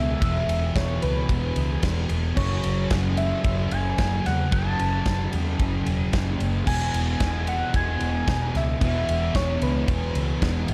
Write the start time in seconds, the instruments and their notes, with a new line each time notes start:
Already playing: fingered electric bass C#2, distorted electric guitar E2 B2 E3, soft synth lead E5
0.21 fingered electric bass E1, distorted electric guitar E2 B2 E3, soft synth lead E5, kick, ride
0.49 fingered electric bass E1, ride
0.76 fingered electric bass E1, soft synth lead C#5, kick, snare, ride
1.02 fingered electric bass C#2, soft synth lead B4, ride
1.29 fingered electric bass E1, kick, ride
1.56 fingered electric bass C#2, ride
1.83 fingered electric bass E1, kick, snare, ride
2.09 fingered electric bass E1, ride
2.36 fingered electric bass F#1, distorted electric guitar F#2 C#3 F#3, soft synth lead C#5, kick, crash
2.64 fingered electric bass F#1, ride
2.90 fingered electric bass F#1, kick, snare, ride
3.17 soft synth lead E5, ride
3.44 fingered electric bass F#1, soft synth lead E5, kick, ride
3.71 fingered electric bass F#1, soft synth lead G#5, ride
3.98 fingered electric bass F#1, kick, snare, ride
4.26 fingered electric bass E2, soft synth lead F#5, snare, ride
4.51 fingered electric bass F#1, distorted electric guitar F#2 C#3 F#3, soft synth lead A5, kick, ride
4.79 fingered electric bass F#1, ride
5.06 fingered electric bass F#1, kick, snare, ride
5.33 fingered electric bass E2, ride
5.59 fingered electric bass F#1, kick, ride
5.86 fingered electric bass E1, ride
6.13 fingered electric bass F#1, kick, snare, ride
6.40 fingered electric bass F#1, ride
6.66 fingered electric bass E1, distorted electric guitar E2 B2 E3, soft synth lead G#5, kick, crash
6.94 fingered electric bass E1, ride
7.20 fingered electric bass E1, kick, snare, ride
7.47 soft synth lead F#5, ride
7.74 fingered electric bass E1, soft synth lead G#5, kick, ride
8.01 fingered electric bass E1, ride
8.28 fingered electric bass E1, kick, snare, ride
8.55 fingered electric bass C#2, soft synth lead E5, snare, ride
8.80 fingered electric bass E1, distorted electric guitar E2 B2 E3, soft synth lead E5, kick, ride
9.09 fingered electric bass E1, ride
9.35 fingered electric bass E1, soft synth lead C#5, kick, snare, ride
9.62 fingered electric bass C#2, soft synth lead B4, ride
9.88 fingered electric bass E1, kick, ride
10.15 fingered electric bass C#2, ride
10.42 fingered electric bass E1, kick, snare, ride
10.68 fingered electric bass G#1, ride